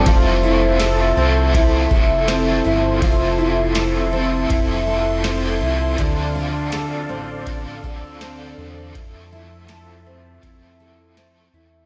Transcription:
Already playing: C4 D4 A4 A5
0.05 F1 F3 C4 E4 A4 E5 C6, kick, ride
0.43 E4
0.80 A4, snare, ride, tambourine
1.16 C2 C4 E4 A4
1.21 C4
1.53 F3 C4 E4, kick, ride
1.58 A4
1.91 F1 A4, kick
2.27 F3 C4 E4, snare, ride, tambourine
2.32 A4
2.65 G1 E4
3.01 F1 F3 C4 E4 A4, kick, ride
3.38 E4
3.75 A4, snare, ride, tambourine
4.12 C4 E4 A4
4.17 C4
4.49 F1 F3 C4 E4, kick, ride
4.54 A4
4.87 A4
5.23 F3 C4 E4, snare, ride, tambourine
5.28 A4
5.61 C2 E4
5.96 D2 D3 F3 A4 D5 F5, kick, ride
6.01 C4 D4 A4
6.35 D4
6.72 A4, snare, ride, tambourine
7.09 A1 C4
7.46 F3 C4 D4, kick, ride
7.50 A4
7.83 D2 A4, kick
8.21 C4 D4 A4, snare, ride, tambourine
8.58 E2 D4
8.93 F2 F3 C4 E5 A5, kick, ride
8.98 E4 A4
9.33 E4
9.68 A4, snare, ride, tambourine
10.06 C4
10.41 F2 F3 C4 E4, kick, ride
10.46 A4
10.80 A4
11.17 C4 E4 A4, snare, ride, tambourine
11.53 E2 E4

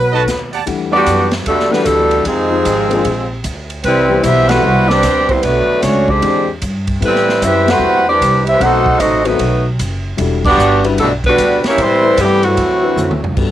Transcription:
Already playing: B1 F#3 B3 B4
0.12 F#3 B3 D#4 F#4 A4 B4 D#5 A5
0.27 D#2, snare, closed hi-hat
0.53 G4 D5 F#5 A5, open hi-hat
0.66 E2 E3 G3 A3 D4 F#5, kick, ride
0.92 G3 B3 D4 F#4 G4 D5
1.06 F#2, kick, hi-hat pedal, ride
1.31 snare, ride
1.46 E2 B2 D3 G3 A3 D4 F#4 A4, kick, ride
1.60 snare
1.71 D3 E3 G3 A3 B3 D4 F#4 A4 B4, snare
1.85 D2 B2 D3 G3 A3 D4 F#4 A4, kick, hi-hat pedal, ride
2.11 ride
2.25 F2 C3 D#3 F3 G#3 C4 D#4 G#4, kick, ride
2.50 F3 G#3 C4 D#4 G#4
2.65 G#1, kick, hi-hat pedal, ride
2.90 F3 A#3 C4 D4 G#4, ride
3.05 A#1, kick, ride
3.44 D2, kick, hi-hat pedal, ride
3.70 ride
3.84 C2 E3 G3 C4 E4 B4, kick, ride
4.09 E3 G3 B3 C4 G4
4.23 B1 G3 B3 C4 E4 G4 B4 E5, kick, hi-hat pedal, ride
4.49 B2 E3 G3 B3 C4 E4 F#4 A4 B4 C5 F#5, snare, ride
4.63 C2
4.89 G3 C4 D4 G4 B4 D5, snare
5.03 D2, kick, snare, hi-hat pedal, ride
5.29 E3 G3 B3 C4 E4 C5, kick, ride
5.43 B1 D3 F#3 A3 B3 D4 F#4 B4, ride
5.67 muted upright bass stroke
5.82 C#2 F#3 A3 C#4 D4 F#4 C#5, kick, snare, hi-hat pedal, ride
6.08 D3 G#3 C4 D4 G4 G#4 D5, kick
6.22 E2 E3 G#3 C4 D4 G4, ride
6.62 G2, kick, hi-hat pedal, ride
6.87 kick, ride
7.00 A2 G3 B3 C4 E4 A4, kick, ride
7.04 E3 G3 C4 E4 B4
7.15 snare
7.29 snare
7.41 F#2 G3 C4 E4 G4 B4 E5, kick, hi-hat pedal, ride
7.66 G3 B3 C4 E4 F#4 A4 B4, snare, ride
7.70 E4 C5 F#5
7.79 E2
8.08 E3 G3 C4 D4 G4 B4 D5
8.21 C2, kick, hi-hat pedal, ride
8.46 G3 C4 E4 G4 B4 E5, ride
8.60 B1 F#3 A3 B3 C4 D#4 F#4 A4 C5 F#5, kick, ride
8.86 kick
8.99 A1 F#3 A3 C4 D#4 F#4 A4 D#5, kick, hi-hat pedal, ride
9.25 D#3 F#3 A3 B3 C4 D#4 F#4 A4 B4, ride
9.39 B1, kick, ride
9.79 F#1, kick, hi-hat pedal, ride
10.17 E1 G3 D4 E4 F#4 A4, kick, ride
10.45 G3 B3 D4 F#4 G4 D5, kick, crash
10.58 G1, hi-hat pedal
10.83 G3 D4 E4 F#4 B4, ride
10.98 B1 B2 D3 G3 A3 D4 F#4 A4, kick, ride
11.24 D3 G3 B3 D4 F#4 B4, kick, ride
11.38 D2, kick, hi-hat pedal, ride
11.63 A#3 C#4 E4 G4 C#5, muted upright bass stroke, snare, ride
11.77 A2 E3 G3 C4, kick, ride
11.82 G3 E4 B4 C5
12.03 A3 C4 E4 G4 B4
12.17 G2 C3 E3 G3 B3, kick, hi-hat pedal, ride
12.22 E3 C4 G4
12.43 A2 C3 E3 F#3 A3 C4 F#4, ride
12.57 D2, kick, ride
12.83 F#3 C4 D4 E4 B4
12.96 F#2, hi-hat pedal, high tom
13.10 D2, high tom
13.23 C2, floor tom
13.36 G2 G3 B3 D4 F#4 A4, kick, crash

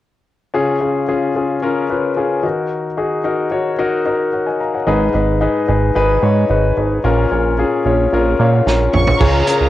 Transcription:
0.54 C#3 C#4 F4 G#4
0.81 C#4 F4 G#4
1.08 C#4 F4 G#4
1.35 C#4 F4 G#4
1.62 C#4 F4 A#4
1.90 C#4 F4 B4
2.16 C#4 F4 G#4
2.43 D#3 D#4 F#4 A#4
2.97 D#4 F#4 G#4
3.24 D#4 F#4 A#4
3.51 D#4 F#4 C#5
3.79 D#4 F#4 A#4
4.06 D#4 F#4 A#4
4.33 C#5 F#5
4.46 D#5 G#5
4.60 F5 A#5
4.74 C#5 F#5
4.87 G#1 G#2 D#4 G#4 B4
5.14 G#1 D#4 G#4 B4
5.41 D#4 G#4 B4
5.68 G#1 D#4 G#4 B4
5.95 G#1 D#4 G#4 B4
6.22 G#2 D#4 G#4 C#5
6.49 G#1 D#4 G#4 B4
6.77 G#1 D#4 G#4 B4
7.04 A#1 A#2 C#4 F4 A#4
7.31 A#1 C#4 F4 C#5
7.58 C#4 F4 G#4
7.85 A#1 C#4 F4 C#5
8.12 A#1 C#4 F4 A#4
8.39 A#2 C#4 F4 C#5 F5
8.54 F#5
8.66 A#1 C#4 F4 C#5 A#5, snare
8.93 A#1 C#4 F4 C#5 C#6, mid tom
9.07 floor tom
9.20 C#2 C#3 C#4 F4 G#4 C#5 A#5, kick, crash
9.47 C#4 F4 G#4 A#4, hi-hat pedal, open hi-hat
9.61 C#2

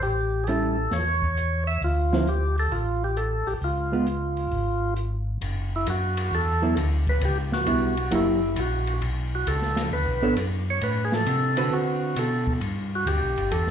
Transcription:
0.02 A1 G4, open hi-hat
0.44 G#4, closed hi-hat
0.48 G3 C#4 E4 A4
0.91 E2 C#5, snare, open hi-hat
1.22 kick
1.37 closed hi-hat
1.67 E5, open hi-hat
1.81 D2 F4, open hi-hat
2.12 D3 F3 C4 E4, snare
2.27 G4, closed hi-hat
2.58 A4, open hi-hat
2.72 A1 F4, open hi-hat
3.04 G4
3.17 A4, closed hi-hat
3.47 A1 G4, open hi-hat
3.61 C#2 F4, open hi-hat
3.92 G#3 B3 F4
4.06 closed hi-hat
4.37 open hi-hat
4.51 G#1, open hi-hat
4.96 closed hi-hat
5.41 F#1, ride
5.76 E4
5.86 F#2 F#4, hi-hat pedal, ride
6.17 ride
6.31 E2 A4
6.62 F#3 B3 E4 A4
6.76 D2, hi-hat pedal, ride
7.07 B4, kick, ride
7.21 C#2 G4, ride
7.52 F#4, snare
7.66 B1 G3 B3 E4, hi-hat pedal, ride
7.97 ride
8.11 F#1 F#3 A#3 E4 G4, ride
8.15 E4
8.56 A#1 F#4, hi-hat pedal, ride
8.87 ride
9.01 B1, ride
9.35 F#4
9.47 C#2 A4, hi-hat pedal, ride
9.62 snare
9.76 snare, ride
9.92 D2 B4
10.06 B1
10.21 A1 B3 D4 A4 C#5
10.36 F#2, hi-hat pedal, ride
10.70 C#5
10.81 A2 B4, ride
11.05 G#4
11.12 A4, snare
11.26 C3, hi-hat pedal, ride
11.57 D3 C4 F#4 B4, ride
11.71 D3 F#4
12.16 B2 A4, hi-hat pedal, ride
12.47 kick
12.61 G2, ride
12.95 F#4
13.06 D2 G4, hi-hat pedal, ride
13.22 B1
13.37 G1, ride
13.51 E2 A4, ride
13.67 snare

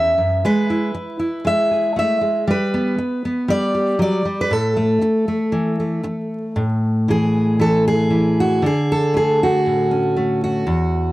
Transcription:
Already playing: E2 C#4 E4 E5
0.18 F#2
0.45 G#3 B4
0.70 E4
0.94 muted steel-string acoustic guitar stroke
1.19 E4
1.45 G#3 E5
1.71 G#4
1.96 A3 E5
2.21 G#3
2.47 G3 B4
2.74 B3
2.98 muted steel-string acoustic guitar stroke
3.25 B3
3.48 G3 D5
3.75 G4
3.99 F#3 D5
4.25 G3
4.41 B4
4.51 A2 A4
4.77 A3
5.02 muted steel-string acoustic guitar stroke
5.28 A3
5.52 E3
5.80 A3
6.03 muted steel-string acoustic guitar stroke
6.56 A2
7.08 E3 G#4
7.59 E3 A4
7.88 G#4
8.10 E3
8.40 F#4
8.62 D3
8.66 G#4
8.92 A4
9.14 A3 G#4
9.43 F#4
9.66 A2
9.91 C#4
10.17 A3
10.44 F#4
10.67 E2

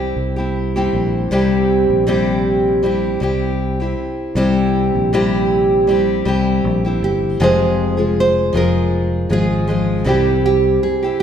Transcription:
Already playing: C2 G3 C4 E4 G4
0.16 C2
0.36 C4 E4 G4
0.76 C3 G3 C4 E4 G4
0.93 A#1
1.31 C2 C3 G3 C4 E4 G4
1.90 A#1
2.07 C3 G3 C4 E4 G4
2.83 G3 C4 E4 G4
3.20 C2 G3 C4 E4 G4
3.80 C4 E4 G4
4.35 C2 C3 G3 C4 E4 G4
4.95 A#1
5.13 C3 G3 C4 E4 G4
5.87 G3 C4 E4 G4
6.25 C2 G3 C4 E4 G4
6.64 A#1
6.85 C4 E4 G4
7.02 G1 G4
7.40 F1 F2 C3 F3 G#3 F4 G#4 C5
7.97 F3 G#3 F4 G#4
8.20 C5
8.53 F1 F3 G#3 F4 G#4
8.57 A#4
9.29 G#1 F3 G#3 F4 G#4
9.67 F3 G#3 F4 G#4
10.04 C2 C3 G3 C4 E4 G4
10.46 G4
10.83 G#4
11.03 C4 E4 G4

